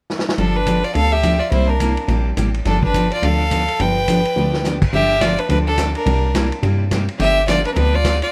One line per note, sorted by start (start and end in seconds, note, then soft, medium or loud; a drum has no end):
0.10 snare medium
0.19 snare medium
0.29 snare medium
0.38 0.84 G1 medium
0.38 0.58 D3 medium
0.38 0.58 F3 medium
0.38 0.58 B3 medium
0.38 0.55 D4 medium
0.38 0.58 D4 medium
0.38 0.58 G4 medium
0.38 0.58 A4 medium
0.38 kick soft
0.38 ride soft
0.55 0.84 D4 medium
0.55 0.86 B4 medium
0.66 0.78 D3 medium
0.66 0.78 F3 medium
0.66 0.78 B3 medium
0.66 0.78 D4 medium
0.66 0.78 G4 medium
0.66 kick soft
0.66 hi-hat pedal medium
0.66 ride medium
0.83 0.93 F4 medium
0.83 0.94 D5 medium
0.83 ride soft
0.94 1.41 D2 medium
0.94 1.15 D3 medium
0.94 1.15 F3 medium
0.94 1.15 B3 medium
0.94 1.15 D4 medium
0.94 1.15 G4 medium
0.94 1.14 A4 medium
0.94 1.14 F5 loud
0.94 kick soft
0.94 ride medium
1.12 1.41 G4 medium
1.12 1.41 E5 medium
1.23 1.34 D3 medium
1.23 1.35 F3 medium
1.23 1.35 B3 medium
1.23 1.35 D4 medium
1.23 1.35 G4 medium
1.23 kick soft
1.23 hi-hat pedal medium
1.23 ride medium
1.40 1.50 F4 medium
1.40 1.51 D5 medium
1.51 1.97 C2 medium
1.51 1.71 C3 medium
1.51 1.72 G3 medium
1.51 1.72 A#3 medium
1.51 1.70 E4 medium
1.51 1.72 E4 medium
1.51 1.72 G4 medium
1.51 1.71 C5 medium
1.51 kick soft
1.51 ride medium
1.68 2.08 D4 medium
1.68 2.09 A#4 medium
1.80 1.92 C3 medium
1.80 1.92 G3 medium
1.80 1.92 A#3 medium
1.80 1.92 E4 medium
1.80 1.92 G4 medium
1.80 kick soft
1.80 hi-hat pedal medium
1.80 ride medium
1.97 ride soft
2.08 2.33 A#1 medium
2.08 2.29 C3 medium
2.08 2.29 G3 medium
2.08 2.29 A#3 medium
2.08 2.29 E4 medium
2.08 2.29 G4 medium
2.08 kick soft
2.08 ride medium
2.37 2.61 A1 medium
2.37 2.48 C3 medium
2.37 2.48 G3 medium
2.37 2.49 A#3 medium
2.37 2.49 E4 medium
2.37 2.49 G4 medium
2.37 kick soft
2.37 hi-hat pedal medium
2.37 ride medium
2.54 ride soft
2.65 3.11 G1 medium
2.65 2.86 D3 medium
2.65 2.85 F3 medium
2.65 2.86 B3 medium
2.65 2.82 D4 medium
2.65 2.86 D4 medium
2.65 2.86 G4 medium
2.65 2.82 A4 medium
2.65 kick soft
2.65 snare soft
2.65 ride medium
2.83 3.10 D4 medium
2.83 3.10 B4 medium
2.83 kick medium
2.94 3.05 D3 medium
2.94 3.06 F3 medium
2.94 3.06 B3 medium
2.94 3.06 D4 medium
2.94 3.06 G4 medium
2.94 kick soft
2.94 hi-hat pedal medium
2.94 ride medium
3.12 3.25 F4 medium
3.12 3.26 D5 medium
3.12 ride soft
3.23 3.68 D2 medium
3.23 3.42 D3 medium
3.23 3.43 F3 medium
3.23 3.43 B3 medium
3.23 3.43 D4 medium
3.23 3.43 G4 medium
3.23 3.83 A4 medium
3.23 3.82 F5 loud
3.23 kick soft
3.23 ride medium
3.51 3.62 D3 medium
3.51 3.62 F3 medium
3.51 3.62 B3 medium
3.51 3.62 D4 medium
3.51 3.63 G4 medium
3.51 kick soft
3.51 hi-hat pedal medium
3.51 ride medium
3.68 ride soft
3.79 4.25 G1 medium
3.79 3.99 D3 medium
3.79 3.99 F3 medium
3.79 3.99 B3 medium
3.79 3.99 D4 medium
3.79 4.00 G4 medium
3.79 4.65 B4 medium
3.79 4.65 G5 loud
3.79 kick soft
3.79 ride medium
4.08 4.19 D3 medium
4.08 4.19 F3 medium
4.08 4.19 B3 medium
4.08 4.19 D4 medium
4.08 4.20 G4 medium
4.08 kick soft
4.08 hi-hat pedal medium
4.08 ride medium
4.25 ride soft
4.36 4.82 D2 medium
4.36 4.56 D3 medium
4.36 4.56 F3 medium
4.36 4.56 B3 medium
4.36 4.57 D4 medium
4.36 4.57 G4 medium
4.53 snare medium
4.64 4.76 D3 medium
4.64 4.76 F3 medium
4.64 4.76 B3 medium
4.64 4.76 D4 medium
4.64 4.77 G4 medium
4.64 snare medium
4.64 hi-hat pedal medium
4.82 kick medium
4.82 crash medium
4.93 5.38 G1 medium
4.93 5.13 D3 medium
4.93 5.13 F3 medium
4.93 5.13 B3 medium
4.93 5.13 D4 medium
4.93 5.23 G4 medium
4.93 5.13 G4 medium
4.93 5.23 E5 loud
4.93 kick soft
5.21 5.32 D3 medium
5.21 5.33 F3 medium
5.21 5.33 B3 medium
5.21 5.33 D4 medium
5.21 5.40 F4 medium
5.21 5.33 G4 medium
5.21 5.41 D5 medium
5.21 kick soft
5.21 snare medium
5.21 hi-hat pedal medium
5.21 ride medium
5.38 5.50 D4 medium
5.38 5.50 B4 medium
5.38 ride soft
5.49 5.95 D2 medium
5.49 5.70 D3 medium
5.49 5.70 F3 medium
5.49 5.70 B3 medium
5.49 5.58 D4 medium
5.49 5.70 D4 medium
5.49 5.70 G4 medium
5.49 5.58 B4 medium
5.49 kick soft
5.49 ride medium
5.67 5.93 D4 medium
5.67 5.93 A4 medium
5.78 5.89 D3 medium
5.78 5.89 F3 medium
5.78 5.89 B3 medium
5.78 5.90 D4 medium
5.78 5.90 G4 medium
5.78 kick soft
5.78 snare medium
5.78 hi-hat pedal medium
5.78 ride medium
5.95 6.48 D4 medium
5.95 6.48 A#4 medium
5.95 ride soft
6.06 6.52 C2 medium
6.06 6.26 C3 medium
6.06 6.26 G3 medium
6.06 6.26 A#3 medium
6.06 6.26 E4 medium
6.06 6.26 G4 medium
6.06 kick soft
6.06 ride medium
6.35 6.46 C3 medium
6.35 6.46 G3 medium
6.35 6.46 A#3 medium
6.35 6.46 E4 medium
6.35 6.46 G4 medium
6.35 kick soft
6.35 snare medium
6.35 hi-hat pedal medium
6.35 ride medium
6.52 ride soft
6.63 7.08 G2 medium
6.63 6.83 C3 medium
6.63 6.83 G3 medium
6.63 6.83 A#3 medium
6.63 6.83 E4 medium
6.63 6.83 G4 medium
6.63 kick soft
6.63 ride medium
6.91 7.03 C3 medium
6.91 7.03 G3 medium
6.91 7.03 A#3 medium
6.91 7.03 E4 medium
6.91 7.03 G4 medium
6.91 kick soft
6.91 snare medium
6.91 hi-hat pedal medium
6.91 ride medium
7.08 ride soft
7.19 7.65 G1 medium
7.19 7.39 D3 medium
7.19 7.39 F3 medium
7.19 7.39 B3 medium
7.19 7.39 D4 medium
7.19 7.46 G4 medium
7.19 7.40 G4 medium
7.19 7.46 E5 loud
7.19 kick soft
7.19 ride medium
7.48 7.59 D3 medium
7.48 7.59 F3 medium
7.48 7.59 B3 medium
7.48 7.59 D4 medium
7.48 7.64 F4 medium
7.48 7.59 G4 medium
7.48 7.64 D5 medium
7.48 kick soft
7.48 snare medium
7.48 hi-hat pedal medium
7.48 ride medium
7.65 7.72 D4 medium
7.65 7.73 B4 medium
7.65 ride soft
7.72 8.22 D2 medium
7.72 7.96 D3 medium
7.72 7.96 F3 medium
7.72 7.96 B3 medium
7.72 7.78 C4 medium
7.72 7.79 A#4 medium
7.72 kick soft
7.72 ride medium
7.77 7.96 D4 medium
7.77 7.96 G4 medium
7.77 7.96 B4 medium
7.94 8.22 F4 medium
7.94 8.22 D5 loud
8.05 8.16 D3 medium
8.05 8.16 F3 medium
8.05 8.16 B3 medium
8.05 8.16 D4 medium
8.05 8.16 G4 medium
8.05 kick soft
8.05 snare medium
8.05 hi-hat pedal medium
8.05 ride medium
8.22 8.32 F4 medium
8.22 8.32 D5 medium
8.22 ride soft